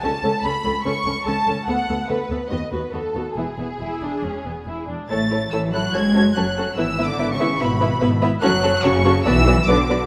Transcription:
<<
  \new Staff \with { instrumentName = "Violin section" } { \time 4/4 \key a \major \tempo 4 = 144 a''4 b''4 cis'''4 a''4 | fis''4 b'4 dis''8 b'8 a'4 | gis'2.~ gis'8 r8 | a'''4 e'''8 fis'''8 gis'''4 fis'''4 |
\tuplet 3/2 { e'''4 d'''8~ d'''8 cis'''4 } b''4. r8 | fis'''4 cis'''4 e'''4 d'''4 | }
  \new Staff \with { instrumentName = "Violin section" } { \time 4/4 \key a \major a''4 b''4 cis'''4 a''4 | fis''4 b'4 dis''8 b'8 a'4 | gis'2.~ gis'8 r8 | <a' cis''>8 <a' cis''>8 <a' cis''>8 <a' cis''>8 <a' cis''>8 <a' cis''>8 <a' cis''>8 <a' cis''>8 |
<b' e''>8 <b' e''>8 <b' e''>8 <b' e''>8 <b' e''>8 <b' e''>8 <b' e''>8 <b' e''>8 | <a' cis''>8 <a' cis''>8 <a' cis''>8 <a' cis''>8 <b' d''>8 <b' d''>8 <b' d''>8 <b' d''>8 | }
  \new Staff \with { instrumentName = "Viola section" } { \time 4/4 \key a \major <cis' a'>8 <cis' a'>8 <cis' a'>8 <cis' a'>8 <cis' a'>8 <cis' a'>8 <cis' a'>8 <cis' a'>8 | <b a'>8 <b a'>8 <b a'>8 <b a'>8 <b fis'>8 <b fis'>8 <b fis'>8 <b fis'>8 | <b e'>8 <b e'>8 e'8 d'8 cis'8 b8 e'8 d'8 | <a e'>8 <a e'>8 <a e'>8 <a e'>8 <cis' fis'>8 <cis' fis'>8 <cis' fis'>8 <cis' fis'>8 |
<b e'>8 <b e'>8 <b e'>8 <b e'>8 <b e'>8 <b e'>8 <b e'>8 <b e'>8 | <cis' fis'>8 <cis' fis'>8 <cis' fis'>8 <cis' fis'>8 <b fis'>8 <b fis'>8 <b fis'>8 <b fis'>8 | }
  \new Staff \with { instrumentName = "Cello section" } { \clef bass \time 4/4 \key a \major cis,8 cis,8 cis,8 cis,8 cis,8 cis,8 cis,8 cis,8 | d,8 d,8 d,8 d,8 dis,8 dis,8 dis,8 dis,8 | e,8 e,8 e,8 e,8 e,8 e,8 e,8 e,8 | a4 e8 fis8 gis4 fis4 |
\tuplet 3/2 { e4 d8~ d8 cis4 } b,4. r8 | fis4 cis4 e4 d4 | }
  \new Staff \with { instrumentName = "Double bass section" } { \clef bass \time 4/4 \key a \major cis,8 cis,8 cis,8 cis,8 cis,8 cis,8 cis,8 cis,8 | d,8 d,8 d,8 d,8 dis,8 dis,8 dis,8 dis,8 | e,,8 e,,8 e,,8 e,,8 e,,8 e,,8 e,,8 e,,8 | a,,4 a,,4 fis,,4 fis,,4 |
gis,,4 gis,,4 gis,,4 gis,,4 | fis,,4 fis,,4 b,,4 b,,4 | }
>>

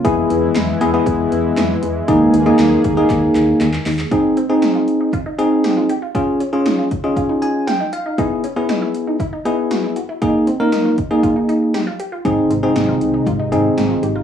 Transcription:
<<
  \new Staff \with { instrumentName = "Tine electric piano" } { \time 4/4 \key aes \major \tempo 4 = 118 << { r1 | r1 | r1 | r2 r8 aes''8 g''8 f''8 |
r1 | r1 | r1 | } \\ { <b e' gis'>4 r8 <b e' gis'>16 <b e' gis'>4. r8. | <bes ees' aes'>8 r16 <bes ees' aes'>8. r16 <bes ees' aes'>4. r8. | <c' ees' aes'>8 r16 <c' ees' aes'>4~ <c' ees' aes'>16 r8 <c' ees' aes'>4 r8 | <des' f' aes'>8 r16 <des' f' aes'>8. r16 <des' f' aes'>4. r8. |
<b e' gis'>8 r16 <b e' gis'>4~ <b e' gis'>16 r8 <b e' gis'>4 r8 | <bes ees' aes'>8 r16 <bes ees' bes'>8. r16 <bes ees' aes'>4. r8. | <c' ees' aes'>8 r16 <c' ees' aes'>4~ <c' ees' aes'>16 r8 <c' ees' aes'>4 r8 | } >> }
  \new Staff \with { instrumentName = "Synth arpeggio sound" } { \time 4/4 \key aes \major r1 | r1 | ees'8 c'16 c'16 ees'16 f'8 ees'16 f'16 ees'16 ees'8 g'16 f'16 g'16 f'16 | f'8 des'16 des'16 ees'16 f'8 ees'16 f'16 ees'16 ees'8 f'16 ees'16 f'16 ees'16 |
dis'8 des'16 des'16 dis'16 e'8 dis'16 e'16 dis'16 dis'8 ges'16 e'16 ges'16 e'16 | ees'8 c'16 des'16 ees'16 f'8 ees'16 f'16 ees'16 ees'8 g'16 f'16 g'16 f'16 | ees'8 c'16 c'16 ees'16 f'8 ees'16 f'16 ees'16 ees'8 g'16 f'16 g'16 f'16 | }
  \new Staff \with { instrumentName = "Analog synth pad" } { \time 4/4 \key aes \major << { <b e'>1 | <bes aes'>1 | r1 | r1 |
r1 | r1 | <aes ees'>1 | } \\ { <e gis>1~ | <e gis>1 | r1 | r1 |
r1 | r1 | <c ees>1 | } >> }
  \new Staff \with { instrumentName = "FM bass" } { \clef bass \time 4/4 \key aes \major e,8 e,8 e,8 e,8 e,8 e,8 e,8 e,8 | ees,8 ees,8 ees,8 ees,8 ees,8 ees,8 ees,8 ees,8 | r1 | r1 |
r1 | r1 | aes,,8 aes,,8 aes,,8 c,8 aes,,8 aes,8 aes,,8 aes,,8 | }
  \new DrumStaff \with { instrumentName = "Drums" } \drummode { \time 4/4 <hh bd>8 hh8 <hc hh sn>8 hh8 <hh bd>8 hh8 <hc hh sn>8 hh8 | <hh bd>8 hh8 <hc hh sn>8 <hh bd>8 <hc hh bd>8 <hc hh>8 <hc hh>16 hc16 <hc hho>16 hc16 | <hh bd>8 hh8 <hh sn>8 hh8 <hh bd>8 hh8 <hh sn>8 hh8 | <hh bd>8 hh8 <hh sn>8 <hh bd>8 <hh bd>8 hh8 <hh sn>8 hh8 |
<hh bd>8 hh8 <hh sn>8 hh8 <hh bd>8 hh8 <hh sn>8 hh8 | <hh bd>8 hh8 <hh sn>8 <hh bd>8 <hh bd>8 hh8 <hh sn>8 hh8 | <hh bd>8 hh8 <hh sn>8 hh8 <hh bd>8 hh8 <hh sn>8 hh8 | }
>>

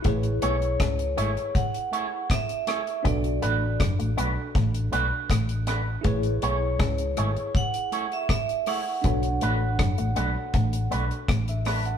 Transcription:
<<
  \new Staff \with { instrumentName = "Vibraphone" } { \time 4/4 \key a \major \tempo 4 = 80 r8 cis''4. fis''4 e''4 | d''4 r2. | r8 cis''4. fis''8. e''16 e''8 fis''8~ | fis''2~ fis''8 r4. | }
  \new Staff \with { instrumentName = "Tine electric piano" } { \time 4/4 \key a \major << { r1 | r1 | r1 | r2. r16 e''16 a''16 fis''16 | } \\ { <e' gis' b' cis''>1 | <d' fis' a' d''>1 | <e' gis' b' cis''>1 | <d' fis' a' cis''>1 | } >> }
  \new Staff \with { instrumentName = "Clean electric guitar" } { \time 4/4 \key a \major r8 <a e' gis' cis''>8 r8 <a e' gis' cis''>8 r8 <a e' gis' cis''>8 r8 <a e' gis' cis''>8 | r8 <a d' fis' b'>8 r8 <a d' fis' b'>8 r8 <a d' fis' b'>8 r8 <a d' fis' b'>8 | r8 <a e' gis' cis''>8 r8 <a e' gis' cis''>8 r8 <a e' gis' cis''>8 r8 <a e' gis' cis''>8 | r8 <a d' fis' b'>8 r8 <a d' fis' b'>8 r8 <a d' fis' b'>8 r8 <a d' fis' b'>8 | }
  \new Staff \with { instrumentName = "Clean electric guitar" } { \time 4/4 \key a \major a8 b8 cis'8 gis16 r2 r16 | b8 a8 fis16 a16 b16 r16 a8 b16 r16 a8 r8 | a8 b8 cis'8 gis16 r2 r16 | b8 a8 fis16 a16 b16 r16 a8 b16 r16 a8 r8 | }
  \new Staff \with { instrumentName = "Fingered electric bass" } { \clef bass \time 4/4 \key a \major a,,8 b,,8 cis,8 gis,,16 r2 r16 | b,,8 a,,8 fis,,16 a,,16 b,,16 r16 a,,8 b,,16 r16 a,,4 | a,,8 b,,8 cis,8 gis,,16 r2 r16 | b,,8 a,,8 fis,,16 a,,16 b,,16 r16 a,,8 b,,16 r16 a,,4 | }
  \new DrumStaff \with { instrumentName = "Drums" } \drummode { \time 4/4 <hh bd>16 hh16 hh16 hh16 <hh bd ss>16 hh16 hh16 hh16 <hh bd>16 hh16 hh8 <hh bd ss>16 hh16 <hh ss>16 hh16 | <hh bd>16 hh16 hh8 <hh bd ss>16 hh16 hh8 <hh bd>16 hh16 hh8 <hh bd ss>16 hh16 <hh ss>8 | <hh bd>16 hh16 hh8 <hh bd ss>16 hh16 hh16 hh16 <hh bd>16 hh16 hh16 hh16 <hh bd ss>16 hh16 hho8 | <hh bd>16 hh16 hh8 <hh bd ss>16 hh16 hh8 <hh bd>16 hh16 hh16 hh16 <hh bd ss>16 hh16 <hho ss>16 hh16 | }
>>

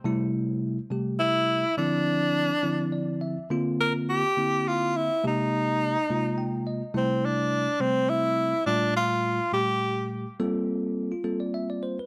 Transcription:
<<
  \new Staff \with { instrumentName = "Tenor saxophone" } { \time 6/8 \key g \dorian \tempo 4. = 70 r2 e'4 | d'2~ d'8 r8 | r8 bes'8 g'4 f'8 e'8 | ees'2~ ees'8 r8 |
c'8 d'4 c'8 e'4 | d'8 f'4 g'4 r8 | r2. | }
  \new Staff \with { instrumentName = "Tine electric piano" } { \time 6/8 \key g \dorian r2. | r2 d''8 e''8 | r2. | r2 g''8 ees''8 |
r2. | r2. | r4 r16 f'16 a'16 d''16 e''16 d''16 c''16 b'16 | }
  \new Staff \with { instrumentName = "Tine electric piano" } { \time 6/8 \key g \dorian <c g a e'>4~ <c g a e'>16 r16 <c g a g'>4~ <c g a g'>16 r16 | <d f c' e'>4~ <d f c' e'>16 r16 <d f c' e'>4~ <d f c' e'>16 r16 | <d bes c' f'>4~ <d bes c' f'>16 r16 <d bes c' e'>4~ <d bes c' e'>16 r16 | <c aes bes g'>4~ <c aes bes g'>16 r16 <c aes bes f'>4~ <c aes bes f'>16 r16 |
<c g a e'>4~ <c g a e'>16 r16 <c g a c'>4~ <c g a c'>16 r16 | <bes, g a f'>4~ <bes, g a f'>16 r16 <bes, g a g'>4~ <bes, g a g'>16 r16 | <g bes c' f' a'>4~ <g bes c' f' a'>16 r16 <g bes c' f'>4~ <g bes c' f'>16 r16 | }
>>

